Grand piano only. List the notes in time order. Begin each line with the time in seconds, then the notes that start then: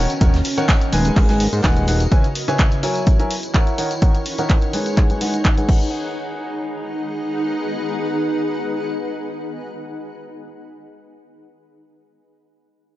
Already playing: D#3 D#4 A#4 C#5 F#5
0.21 D#3 D#4 A#4 C#5 F#5
0.58 D#3 D#4 A#4 C#5 F#5
0.93 G#3 D#4 G#4 B4 G#5
1.29 G#3 D#4 G#4 B4 G#5
1.64 G#3 D#4 G#4 B4 F#5
1.88 D#4 G#4 B4 F#5
2.12 C#3 E4 B4 C#5 G#5
2.48 C#3 E4 B4 C#5 G#5
2.83 F#3 E4 A#4 C#5 G#5
3.19 F#3 E4 A#4 C#5 G#5
3.54 E4 A#4 C#5 F#5
3.78 D#3 D#4 A#4 C#5 F#5
4.02 D#3 D#4 A#4 C#5 F#5
4.38 D#3 D#4 A#4 C#5 F#5
4.73 G#3 D#4 G#4 B4 G#5
5.10 G#3 D#4 G#4 B4 G#5
5.21 G#3 D#4 G#4 B4 F#5
5.57 G#3 D#4 G#4 B4 F#5
5.69 D#4 G#4 F#5